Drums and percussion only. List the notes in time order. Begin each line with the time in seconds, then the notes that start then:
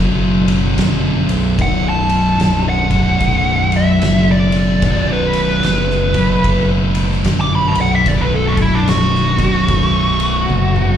0.48 ride
0.78 snare, ride
1.29 ride
1.59 kick, ride
2.09 ride
2.40 snare, ride
2.91 kick, ride
3.20 kick, ride
3.72 ride
4.02 snare, ride
4.52 ride
4.82 kick, ride
5.33 ride
5.63 snare, ride
5.90 snare
6.14 kick, ride
6.44 kick, ride
6.95 ride
7.12 snare
7.24 snare, ride
7.75 ride
8.06 kick, ride
8.57 kick, ride
8.87 snare, ride
9.15 snare
9.38 kick, ride
9.68 kick, ride
10.20 ride
10.50 high tom
10.76 mid tom